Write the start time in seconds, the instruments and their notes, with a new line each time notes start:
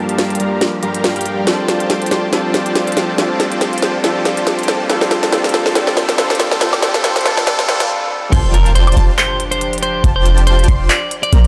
Already playing: string section F3 A#3 G4 D5, supersaw synth G3 G4 A#4 F5 A5, tine electric piano G3 A#3 D4 F4 A4 A5, riser
0.09 closed hi-hat
0.18 snare, closed hi-hat
0.30 closed hi-hat
0.35 closed hi-hat
0.40 supersaw synth G3 G4 A#4 F5 A#5, closed hi-hat
0.61 snare, closed hi-hat
0.83 supersaw synth G3 G4 A#4 F5 A#5, closed hi-hat
0.94 closed hi-hat
1.04 snare, closed hi-hat
1.16 supersaw synth G3 G4 A#4 F5 G5, closed hi-hat
1.21 closed hi-hat
1.26 closed hi-hat
1.45 tine electric piano G3 C4 D4 F4, string section A3, supersaw synth F4 C5 D5 G5 A5, snare, closed hi-hat
1.49 tine electric piano A4
1.68 snare, closed hi-hat
1.80 closed hi-hat
1.90 snare, closed hi-hat
2.02 closed hi-hat
2.06 closed hi-hat
2.11 supersaw synth F4 C5 D5 G5 A5, snare, closed hi-hat
2.31 tine electric piano G3 C4 D4 F4 A4, supersaw synth F4 C5 D5 G5 A5, snare, closed hi-hat
2.54 snare, closed hi-hat
2.66 closed hi-hat
2.75 snare, closed hi-hat
2.87 closed hi-hat
2.92 closed hi-hat
2.97 supersaw synth F4 C5 D5 G5 A5, snare, closed hi-hat
3.16 tine electric piano G3 C4 D4 F4, supersaw synth F4 C5 D5 G5 A5, snare, closed hi-hat
3.20 tine electric piano A4
3.40 snare, closed hi-hat
3.52 closed hi-hat
3.61 snare, closed hi-hat
3.73 closed hi-hat
3.78 closed hi-hat
3.82 supersaw synth F4 C5 D5 G5 A5, snare, closed hi-hat
4.02 tine electric piano G3 C4 D4 F4 A4, supersaw synth F4 C5 D5 G5 A5, snare, closed hi-hat
4.25 snare, closed hi-hat
4.37 closed hi-hat
4.47 snare, closed hi-hat
4.59 closed hi-hat
4.63 closed hi-hat
4.68 string section A#3 A4, supersaw synth F4 C5 D5 G5 A5, snare, closed hi-hat
4.88 tine electric piano G3 C4 D4 F4 A4, supersaw synth F4 C5 D5 G5 A5, snare, closed hi-hat
5.01 snare
5.11 snare, closed hi-hat
5.23 snare, closed hi-hat
5.31 tine electric piano G3 C4 D4 F4 A4, supersaw synth F4 C5 D5 G5 A5, snare, closed hi-hat
5.44 snare, closed hi-hat
5.49 closed hi-hat
5.54 snare, closed hi-hat
5.66 snare
5.74 tine electric piano G3 C4 D4 F4 A4, supersaw synth F4 C5 D5 G5 A5, snare, closed hi-hat
5.87 snare
5.97 snare, closed hi-hat
6.09 snare, closed hi-hat
6.16 tine electric piano G3 C4 D4 F4, supersaw synth F4 C5 D5 G5 A5, snare, closed hi-hat
6.20 tine electric piano A4
6.30 snare, closed hi-hat
6.35 closed hi-hat
6.39 string section F3 G4 D5, snare, closed hi-hat
6.51 snare
6.59 tine electric piano G3 C4 D4 F4 A4, supersaw synth F4 C5 D5 G5 A5, snare, closed hi-hat
6.73 snare, high woodblock
6.80 tine electric piano G3 C4 D4 F4 A4, supersaw synth F4 C5 D5 G5 A5, snare, closed hi-hat
6.94 snare, closed hi-hat
7.02 tine electric piano G3 C4 D4 F4, supersaw synth F4 C5 D5 G5 A5, snare, closed hi-hat
7.06 tine electric piano A4
7.16 snare, closed hi-hat
7.21 tine electric piano G3 C4, closed hi-hat
7.25 tine electric piano D4 F4 A4, supersaw synth F4 C5 D5 G5 A5, snare, closed hi-hat
7.37 snare
7.45 tine electric piano G3 C4 D4 F4 A4, supersaw synth F4 C5 D5 G5 A5, snare, closed hi-hat, swell
7.59 snare
7.66 tine electric piano G3 C4 D4 F4 A4, supersaw synth F4 C5 D5 G5 A5, snare, closed hi-hat
7.80 snare, closed hi-hat
8.32 808-style bass F1, string section F3 D4 G4, supersaw synth F4 C5 D5 G5 A5, clean electric guitar C5, synth pluck A5, kick, closed hi-hat, crash, impact
8.54 clean electric guitar A#4, closed hi-hat
8.66 closed hi-hat
8.75 clean electric guitar C5, closed hi-hat
8.87 closed hi-hat, high woodblock
8.92 closed hi-hat
8.97 808-style bass F1, supersaw synth F4 C5 D5 G5 A5, synth pluck A5, closed hi-hat
9.18 clean electric guitar C5, clap, closed hi-hat
9.40 closed hi-hat
9.51 clean electric guitar C5, closed hi-hat
9.61 closed hi-hat
9.73 closed hi-hat
9.78 closed hi-hat
9.82 clean electric guitar C5, closed hi-hat
10.04 808-style bass F1, supersaw synth F4 C5 D5 G5 A5, synth pluck A5, kick, closed hi-hat
10.16 clean electric guitar C5
10.26 closed hi-hat
10.38 closed hi-hat
10.47 clean electric guitar C5, closed hi-hat
10.59 closed hi-hat
10.64 closed hi-hat
10.68 808-style bass F1, supersaw synth F4 C5 D5 G5 C6, synth pluck C6, kick, closed hi-hat
10.90 clean electric guitar D5, clap, closed hi-hat
11.11 closed hi-hat
11.23 clean electric guitar D5, closed hi-hat
11.33 808-style bass A#1, supersaw synth A#3 A#4 C5 D5 A#5, synth pluck A#5, closed hi-hat